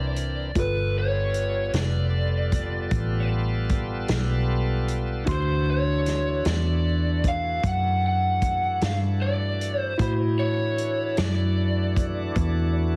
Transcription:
Already playing: fingered electric bass C2, tonewheel organ E3 C4 D4 A#4, tine electric piano E4 A#4 D5, lead electric guitar D5
0.16 closed hi-hat
0.55 fingered electric bass G1, tonewheel organ G3 B3 F4 A4, tine electric piano F4 A4, kick, closed hi-hat
0.59 tine electric piano B4, lead electric guitar B4
0.98 lead electric guitar C#5
1.34 closed hi-hat
1.73 fingered electric bass F1, snare, closed hi-hat
1.79 lead electric guitar D5
2.52 kick, closed hi-hat
2.91 fingered electric bass A1, kick, closed hi-hat
3.69 kick, closed hi-hat
4.08 fingered electric bass B1, snare, closed hi-hat
4.88 closed hi-hat
5.24 fingered electric bass D2, tonewheel organ E3 A3 D4 F#4, tine electric piano D4 F#4, kick, closed hi-hat
5.29 lead electric guitar C5, tine electric piano C6
5.70 lead electric guitar C#5
6.06 snare, closed hi-hat
6.45 fingered electric bass E2, lead electric guitar D5, snare, closed hi-hat
7.24 kick, closed hi-hat
7.28 lead electric guitar F5
7.63 fingered electric bass F#2, lead electric guitar F#5, kick, closed hi-hat
8.07 lead electric guitar F#5
8.42 kick, closed hi-hat
8.81 fingered electric bass G2, lead electric guitar F5, snare, closed hi-hat
9.22 lead electric guitar D5
9.61 closed hi-hat
9.81 lead electric guitar C5
9.97 fingered electric bass A2, tonewheel organ E3 G3 C#4 D#5, tine electric piano E4 F#4 B5, lead electric guitar C5, kick, closed hi-hat
10.39 tonewheel organ E3 A3 D4 F#4, lead electric guitar C#5
10.78 closed hi-hat
11.17 fingered electric bass F#2, lead electric guitar D5, snare, closed hi-hat
11.96 kick, closed hi-hat
12.36 fingered electric bass E2, kick, closed hi-hat

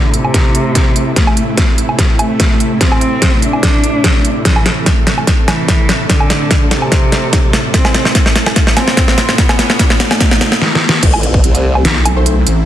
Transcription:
Already playing: supersaw synth A2 C3 A3 E4
0.14 cello C3, closed hi-hat
0.25 low woodblock
0.34 kick, snare, closed hi-hat
0.55 closed hi-hat
0.75 kick, snare, closed hi-hat
0.96 closed hi-hat
1.16 cello A3, kick, snare, closed hi-hat
1.27 low woodblock
1.37 closed hi-hat
1.57 kick, snare, closed hi-hat
1.78 closed hi-hat
1.89 low woodblock
1.99 kick, snare, closed hi-hat
2.19 cello A3, closed hi-hat, low woodblock
2.40 kick, snare, closed hi-hat
2.60 closed hi-hat
2.81 cello C4, kick, snare, closed hi-hat
2.92 low woodblock
3.01 closed hi-hat
3.22 kick, snare, closed hi-hat
3.42 cello D4, closed hi-hat
3.53 low woodblock
3.63 kick, snare, closed hi-hat
3.84 closed hi-hat
4.04 kick, snare, closed hi-hat
4.25 closed hi-hat
4.45 cello E3, supersaw synth A4, kick, snare, closed hi-hat, riser
4.56 low woodblock
4.66 snare, closed hi-hat
4.86 kick, snare, closed hi-hat
5.07 snare, closed hi-hat
5.18 low woodblock
5.27 kick, snare, closed hi-hat
5.48 cello E3, snare, closed hi-hat, low woodblock
5.68 kick, snare, closed hi-hat
5.89 snare, closed hi-hat
6.10 cello D3, kick, snare, closed hi-hat
6.20 low woodblock
6.30 snare, closed hi-hat
6.51 kick, snare, closed hi-hat
6.71 cello C3, snare, closed hi-hat
6.82 low woodblock
6.92 kick, snare, closed hi-hat
7.12 snare, closed hi-hat
7.33 kick, snare, closed hi-hat
7.53 snare, closed hi-hat
7.74 cello C4, kick, snare, closed hi-hat
7.85 snare, low woodblock
7.95 snare, closed hi-hat
8.05 snare
8.15 kick, snare, closed hi-hat
8.26 snare
8.36 snare, closed hi-hat
8.46 snare, low woodblock
8.56 kick, snare, closed hi-hat
8.67 snare
8.77 cello C4, snare, closed hi-hat, low woodblock
8.88 snare
8.97 kick, snare, closed hi-hat
9.08 snare
9.18 snare, closed hi-hat
9.29 snare
9.38 cello B3, kick, snare, closed hi-hat
9.49 snare, low woodblock
9.59 snare, closed hi-hat
9.70 snare
9.79 kick, snare, closed hi-hat
9.90 snare
10.00 cello A3, snare, closed hi-hat
10.11 snare, low woodblock
10.21 kick, snare, closed hi-hat
10.31 snare
10.41 snare, closed hi-hat
10.52 snare
10.62 snare
10.75 snare
10.89 snare
11.03 wobble bass A1, supersaw synth A3 C4 E4, kick, closed hi-hat, crash, impact
11.14 low woodblock
11.23 closed hi-hat
11.34 kick
11.44 wobble bass C2, closed hi-hat
11.55 closed hi-hat
11.75 low woodblock
11.85 wobble bass B1, snare, closed hi-hat
12.05 closed hi-hat, low woodblock
12.16 synth stab A3 E4 C5
12.26 closed hi-hat
12.47 wobble bass A1, closed hi-hat

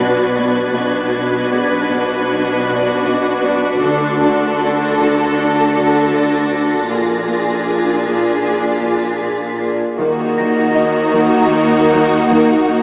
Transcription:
Already playing: double bass section B1, cello section B2, viola section D4 F#4, synth texture F#4 B4 D5, violin section B4 F#6 G#6 A6
0.37 cello section B3
0.75 double bass section B1, cello section B2, viola section D4 F#4, synth texture F#4 B4 D5, violin section B4
1.13 cello section B3
1.52 cello section B3, celesta G#4 G#6
1.90 cello section B2
2.30 cello section B3
2.68 cello section B2
3.06 cello section B2
3.45 cello section B3
3.83 double bass section D2, cello section D3, violin section A4 A6, synth texture A4, celesta D6
4.22 cello section D4
4.60 cello section D4, violin section A#6
4.99 cello section D3
5.37 cello section D4
5.76 cello section D3
6.14 cello section D3
6.53 cello section D4
6.90 double bass section A#1, cello section A#2, viola section D4 F4, synth texture F4 G#4 D5, violin section G#4
7.30 cello section A#3
7.68 cello section A#3
8.06 cello section A#2
8.32 violin section B6
8.45 cello section A#3
8.83 cello section A#2
9.22 cello section A#2
9.60 cello section A#3
9.98 double bass section D#2, cello section D#3, viola section A#3 D#4, violin section F#4, synth texture F#4 A#4 D#5
10.37 cello section D#3, celesta A#6
10.75 cello section D#4
11.14 cello section D#3
11.52 cello section D#3
11.91 cello section D#3
12.30 cello section D#3
12.68 cello section D#4

